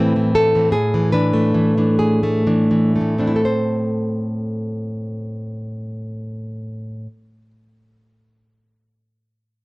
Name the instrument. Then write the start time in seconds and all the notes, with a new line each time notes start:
nylon-string guitar
Already playing: A2 E3 A3 C4 B4
0.16 E3
0.35 A3 A4
0.55 E3 C4
0.72 A2 G#4
0.94 E3
1.12 E3 D4 B4
1.33 A3
1.54 E3
1.78 E3 D4
1.99 G#4
2.23 A3
2.47 E3 D4
2.71 E3
2.96 A3
3.01 A2
3.18 E3 C4 D4
3.27 E4
3.36 A4
3.45 C5